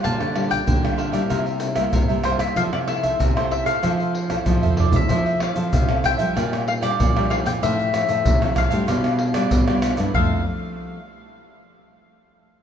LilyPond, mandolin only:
\new Staff \with { instrumentName = "Mandolin" } { \time 4/4 \key f \major \tempo 4 = 95 a''8. g''8. e''4. r8 c''16 e''16 | f''16 d''16 e''8. c''16 e''16 f''4.~ f''16 d''16 e''16~ | e''8 f''4 g''4 f''16 d''8. f''16 g''16 | e''4. f''2 r8 |
f''8 r2. r8 | }